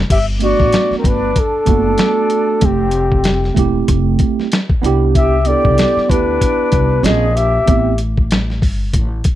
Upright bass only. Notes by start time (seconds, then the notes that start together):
0.10 G1
0.59 A1
0.91 muted upright bass stroke
1.04 G1
1.67 F#1
2.62 F1
3.57 E1
3.88 F1
4.83 C2
5.65 C2
5.96 muted upright bass stroke
6.10 D2
6.73 C2
7.03 A#1
7.68 A1
8.62 G1
8.93 A1